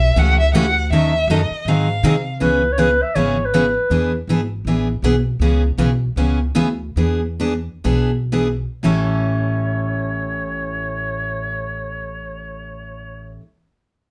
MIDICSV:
0, 0, Header, 1, 6, 480
1, 0, Start_track
1, 0, Tempo, 374532
1, 1166, Time_signature, 4, 2, 24, 8
1, 7407, Tempo, 388601
1, 8367, Tempo, 416956
1, 9327, Tempo, 463679
1, 10287, Tempo, 515021
1, 10767, Tempo, 535714
1, 15493, End_track
2, 0, Start_track
2, 0, Title_t, "Violin"
2, 0, Program_c, 0, 40
2, 0, Note_on_c, 0, 76, 88
2, 236, Note_on_c, 0, 78, 94
2, 255, Note_off_c, 0, 76, 0
2, 502, Note_off_c, 0, 78, 0
2, 510, Note_on_c, 0, 76, 84
2, 680, Note_off_c, 0, 76, 0
2, 698, Note_on_c, 0, 78, 93
2, 1139, Note_off_c, 0, 78, 0
2, 1191, Note_on_c, 0, 76, 92
2, 1681, Note_on_c, 0, 75, 78
2, 1700, Note_off_c, 0, 76, 0
2, 2159, Note_on_c, 0, 77, 72
2, 2178, Note_off_c, 0, 75, 0
2, 2913, Note_off_c, 0, 77, 0
2, 15493, End_track
3, 0, Start_track
3, 0, Title_t, "Clarinet"
3, 0, Program_c, 1, 71
3, 3092, Note_on_c, 1, 71, 79
3, 3490, Note_on_c, 1, 73, 93
3, 3509, Note_off_c, 1, 71, 0
3, 3576, Note_on_c, 1, 71, 89
3, 3596, Note_off_c, 1, 73, 0
3, 3872, Note_on_c, 1, 76, 96
3, 3891, Note_off_c, 1, 71, 0
3, 4041, Note_on_c, 1, 73, 87
3, 4060, Note_off_c, 1, 76, 0
3, 4425, Note_on_c, 1, 71, 72
3, 4444, Note_off_c, 1, 73, 0
3, 5388, Note_off_c, 1, 71, 0
3, 10778, Note_on_c, 1, 73, 64
3, 14838, Note_off_c, 1, 73, 0
3, 15493, End_track
4, 0, Start_track
4, 0, Title_t, "Steel-string acoustic guitar"
4, 0, Program_c, 2, 25
4, 209, Note_on_c, 2, 49, 70
4, 209, Note_on_c, 2, 52, 68
4, 217, Note_on_c, 2, 57, 70
4, 219, Note_on_c, 2, 61, 71
4, 225, Note_on_c, 2, 67, 78
4, 472, Note_off_c, 2, 49, 0
4, 472, Note_off_c, 2, 52, 0
4, 476, Note_off_c, 2, 57, 0
4, 477, Note_off_c, 2, 61, 0
4, 480, Note_off_c, 2, 67, 0
4, 699, Note_on_c, 2, 52, 102
4, 700, Note_on_c, 2, 49, 94
4, 702, Note_on_c, 2, 57, 97
4, 708, Note_on_c, 2, 61, 106
4, 709, Note_on_c, 2, 67, 114
4, 833, Note_off_c, 2, 49, 0
4, 833, Note_off_c, 2, 52, 0
4, 834, Note_off_c, 2, 57, 0
4, 837, Note_off_c, 2, 61, 0
4, 838, Note_off_c, 2, 67, 0
4, 1182, Note_on_c, 2, 51, 65
4, 1190, Note_on_c, 2, 54, 73
4, 1191, Note_on_c, 2, 63, 73
4, 1195, Note_on_c, 2, 61, 66
4, 1196, Note_on_c, 2, 69, 76
4, 1438, Note_off_c, 2, 51, 0
4, 1442, Note_off_c, 2, 54, 0
4, 1442, Note_off_c, 2, 63, 0
4, 1444, Note_off_c, 2, 61, 0
4, 1445, Note_off_c, 2, 69, 0
4, 1664, Note_on_c, 2, 54, 83
4, 1670, Note_on_c, 2, 51, 79
4, 1672, Note_on_c, 2, 61, 93
4, 1673, Note_on_c, 2, 63, 93
4, 1675, Note_on_c, 2, 69, 85
4, 1795, Note_off_c, 2, 54, 0
4, 1798, Note_off_c, 2, 51, 0
4, 1799, Note_off_c, 2, 61, 0
4, 1799, Note_off_c, 2, 63, 0
4, 1800, Note_off_c, 2, 69, 0
4, 2152, Note_on_c, 2, 51, 65
4, 2152, Note_on_c, 2, 54, 65
4, 2154, Note_on_c, 2, 60, 69
4, 2155, Note_on_c, 2, 63, 69
4, 2159, Note_on_c, 2, 68, 75
4, 2403, Note_off_c, 2, 51, 0
4, 2403, Note_off_c, 2, 54, 0
4, 2403, Note_off_c, 2, 60, 0
4, 2404, Note_off_c, 2, 63, 0
4, 2406, Note_off_c, 2, 68, 0
4, 2611, Note_on_c, 2, 51, 90
4, 2619, Note_on_c, 2, 54, 89
4, 2620, Note_on_c, 2, 60, 88
4, 2623, Note_on_c, 2, 63, 95
4, 2623, Note_on_c, 2, 68, 107
4, 2748, Note_off_c, 2, 51, 0
4, 2752, Note_off_c, 2, 54, 0
4, 2753, Note_off_c, 2, 60, 0
4, 2754, Note_off_c, 2, 63, 0
4, 2754, Note_off_c, 2, 68, 0
4, 3078, Note_on_c, 2, 49, 68
4, 3083, Note_on_c, 2, 52, 59
4, 3086, Note_on_c, 2, 59, 66
4, 3087, Note_on_c, 2, 61, 73
4, 3095, Note_on_c, 2, 68, 77
4, 3346, Note_off_c, 2, 49, 0
4, 3348, Note_off_c, 2, 52, 0
4, 3350, Note_off_c, 2, 59, 0
4, 3350, Note_off_c, 2, 61, 0
4, 3354, Note_off_c, 2, 68, 0
4, 3560, Note_on_c, 2, 49, 81
4, 3564, Note_on_c, 2, 52, 81
4, 3569, Note_on_c, 2, 59, 70
4, 3573, Note_on_c, 2, 68, 83
4, 3575, Note_on_c, 2, 61, 84
4, 3702, Note_off_c, 2, 49, 0
4, 3704, Note_off_c, 2, 52, 0
4, 3707, Note_off_c, 2, 59, 0
4, 3709, Note_off_c, 2, 68, 0
4, 3710, Note_off_c, 2, 61, 0
4, 4042, Note_on_c, 2, 49, 69
4, 4043, Note_on_c, 2, 52, 66
4, 4046, Note_on_c, 2, 59, 69
4, 4049, Note_on_c, 2, 61, 77
4, 4055, Note_on_c, 2, 68, 76
4, 4308, Note_off_c, 2, 49, 0
4, 4308, Note_off_c, 2, 52, 0
4, 4309, Note_off_c, 2, 59, 0
4, 4311, Note_off_c, 2, 61, 0
4, 4314, Note_off_c, 2, 68, 0
4, 4532, Note_on_c, 2, 49, 83
4, 4535, Note_on_c, 2, 52, 85
4, 4538, Note_on_c, 2, 59, 94
4, 4540, Note_on_c, 2, 68, 86
4, 4545, Note_on_c, 2, 61, 87
4, 4668, Note_off_c, 2, 49, 0
4, 4670, Note_off_c, 2, 52, 0
4, 4671, Note_off_c, 2, 59, 0
4, 4673, Note_off_c, 2, 68, 0
4, 4675, Note_off_c, 2, 61, 0
4, 5008, Note_on_c, 2, 52, 65
4, 5010, Note_on_c, 2, 59, 65
4, 5017, Note_on_c, 2, 62, 60
4, 5021, Note_on_c, 2, 68, 66
4, 5271, Note_off_c, 2, 52, 0
4, 5272, Note_off_c, 2, 59, 0
4, 5275, Note_off_c, 2, 62, 0
4, 5277, Note_off_c, 2, 68, 0
4, 5500, Note_on_c, 2, 52, 80
4, 5505, Note_on_c, 2, 59, 69
4, 5512, Note_on_c, 2, 62, 76
4, 5513, Note_on_c, 2, 68, 83
4, 5633, Note_off_c, 2, 52, 0
4, 5635, Note_off_c, 2, 59, 0
4, 5639, Note_off_c, 2, 62, 0
4, 5639, Note_off_c, 2, 68, 0
4, 5984, Note_on_c, 2, 52, 70
4, 5990, Note_on_c, 2, 59, 71
4, 5993, Note_on_c, 2, 62, 70
4, 6001, Note_on_c, 2, 68, 67
4, 6239, Note_off_c, 2, 52, 0
4, 6242, Note_off_c, 2, 59, 0
4, 6243, Note_off_c, 2, 62, 0
4, 6247, Note_off_c, 2, 68, 0
4, 6456, Note_on_c, 2, 52, 82
4, 6461, Note_on_c, 2, 62, 92
4, 6463, Note_on_c, 2, 59, 99
4, 6465, Note_on_c, 2, 68, 101
4, 6591, Note_off_c, 2, 52, 0
4, 6593, Note_off_c, 2, 62, 0
4, 6594, Note_off_c, 2, 59, 0
4, 6595, Note_off_c, 2, 68, 0
4, 6938, Note_on_c, 2, 52, 65
4, 6941, Note_on_c, 2, 49, 60
4, 6942, Note_on_c, 2, 59, 62
4, 6943, Note_on_c, 2, 61, 64
4, 6947, Note_on_c, 2, 68, 68
4, 7197, Note_off_c, 2, 52, 0
4, 7198, Note_off_c, 2, 49, 0
4, 7199, Note_off_c, 2, 59, 0
4, 7199, Note_off_c, 2, 61, 0
4, 7201, Note_off_c, 2, 68, 0
4, 7412, Note_on_c, 2, 49, 81
4, 7412, Note_on_c, 2, 52, 83
4, 7413, Note_on_c, 2, 61, 77
4, 7420, Note_on_c, 2, 59, 72
4, 7425, Note_on_c, 2, 68, 86
4, 7547, Note_off_c, 2, 49, 0
4, 7547, Note_off_c, 2, 52, 0
4, 7548, Note_off_c, 2, 61, 0
4, 7551, Note_off_c, 2, 59, 0
4, 7553, Note_off_c, 2, 68, 0
4, 7891, Note_on_c, 2, 49, 64
4, 7891, Note_on_c, 2, 52, 62
4, 7893, Note_on_c, 2, 59, 75
4, 7897, Note_on_c, 2, 61, 73
4, 7902, Note_on_c, 2, 68, 68
4, 8152, Note_off_c, 2, 49, 0
4, 8152, Note_off_c, 2, 52, 0
4, 8153, Note_off_c, 2, 59, 0
4, 8155, Note_off_c, 2, 61, 0
4, 8157, Note_off_c, 2, 68, 0
4, 8356, Note_on_c, 2, 52, 86
4, 8358, Note_on_c, 2, 49, 80
4, 8362, Note_on_c, 2, 59, 95
4, 8363, Note_on_c, 2, 61, 83
4, 8372, Note_on_c, 2, 68, 105
4, 8497, Note_off_c, 2, 52, 0
4, 8498, Note_off_c, 2, 49, 0
4, 8500, Note_off_c, 2, 59, 0
4, 8500, Note_off_c, 2, 61, 0
4, 8505, Note_off_c, 2, 68, 0
4, 8843, Note_on_c, 2, 52, 63
4, 8843, Note_on_c, 2, 59, 61
4, 8846, Note_on_c, 2, 62, 60
4, 8854, Note_on_c, 2, 68, 65
4, 9107, Note_off_c, 2, 52, 0
4, 9107, Note_off_c, 2, 59, 0
4, 9108, Note_off_c, 2, 62, 0
4, 9112, Note_off_c, 2, 68, 0
4, 9333, Note_on_c, 2, 52, 67
4, 9333, Note_on_c, 2, 59, 77
4, 9342, Note_on_c, 2, 62, 82
4, 9342, Note_on_c, 2, 68, 83
4, 9463, Note_off_c, 2, 52, 0
4, 9463, Note_off_c, 2, 59, 0
4, 9468, Note_off_c, 2, 62, 0
4, 9468, Note_off_c, 2, 68, 0
4, 9794, Note_on_c, 2, 52, 62
4, 9797, Note_on_c, 2, 62, 75
4, 9798, Note_on_c, 2, 59, 66
4, 9802, Note_on_c, 2, 68, 78
4, 10061, Note_off_c, 2, 52, 0
4, 10063, Note_off_c, 2, 59, 0
4, 10063, Note_off_c, 2, 62, 0
4, 10065, Note_off_c, 2, 68, 0
4, 10289, Note_on_c, 2, 52, 80
4, 10293, Note_on_c, 2, 59, 78
4, 10297, Note_on_c, 2, 62, 79
4, 10301, Note_on_c, 2, 68, 86
4, 10424, Note_off_c, 2, 52, 0
4, 10426, Note_off_c, 2, 59, 0
4, 10428, Note_off_c, 2, 62, 0
4, 10430, Note_off_c, 2, 68, 0
4, 10763, Note_on_c, 2, 45, 71
4, 10771, Note_on_c, 2, 52, 77
4, 10774, Note_on_c, 2, 55, 80
4, 10778, Note_on_c, 2, 61, 87
4, 10783, Note_on_c, 2, 64, 75
4, 10785, Note_on_c, 2, 69, 81
4, 14859, Note_off_c, 2, 45, 0
4, 14867, Note_off_c, 2, 52, 0
4, 14870, Note_off_c, 2, 55, 0
4, 14875, Note_off_c, 2, 61, 0
4, 14880, Note_off_c, 2, 64, 0
4, 14882, Note_off_c, 2, 69, 0
4, 15493, End_track
5, 0, Start_track
5, 0, Title_t, "Upright bass"
5, 0, Program_c, 3, 32
5, 0, Note_on_c, 3, 35, 96
5, 198, Note_off_c, 3, 35, 0
5, 205, Note_on_c, 3, 37, 87
5, 672, Note_off_c, 3, 37, 0
5, 683, Note_on_c, 3, 38, 102
5, 1150, Note_off_c, 3, 38, 0
5, 1161, Note_on_c, 3, 39, 86
5, 1629, Note_off_c, 3, 39, 0
5, 1634, Note_on_c, 3, 42, 94
5, 1910, Note_off_c, 3, 42, 0
5, 2116, Note_on_c, 3, 44, 79
5, 2586, Note_off_c, 3, 44, 0
5, 2603, Note_on_c, 3, 48, 98
5, 3070, Note_off_c, 3, 48, 0
5, 3088, Note_on_c, 3, 37, 82
5, 3855, Note_off_c, 3, 37, 0
5, 4044, Note_on_c, 3, 32, 67
5, 4813, Note_off_c, 3, 32, 0
5, 4998, Note_on_c, 3, 40, 80
5, 5385, Note_off_c, 3, 40, 0
5, 5478, Note_on_c, 3, 32, 73
5, 5889, Note_off_c, 3, 32, 0
5, 5955, Note_on_c, 3, 33, 69
5, 6368, Note_off_c, 3, 33, 0
5, 6438, Note_on_c, 3, 35, 79
5, 6850, Note_off_c, 3, 35, 0
5, 6913, Note_on_c, 3, 37, 78
5, 7305, Note_off_c, 3, 37, 0
5, 7401, Note_on_c, 3, 35, 86
5, 7807, Note_off_c, 3, 35, 0
5, 7876, Note_on_c, 3, 37, 71
5, 8292, Note_off_c, 3, 37, 0
5, 8368, Note_on_c, 3, 38, 84
5, 8767, Note_off_c, 3, 38, 0
5, 8830, Note_on_c, 3, 40, 80
5, 9608, Note_off_c, 3, 40, 0
5, 9797, Note_on_c, 3, 35, 71
5, 10585, Note_off_c, 3, 35, 0
5, 10764, Note_on_c, 3, 33, 78
5, 14824, Note_off_c, 3, 33, 0
5, 15493, End_track
6, 0, Start_track
6, 0, Title_t, "Muted upright bass strokes"
6, 1930, Note_on_c, 9, 29, 40
6, 2058, Note_off_c, 9, 29, 0
6, 15493, End_track
0, 0, End_of_file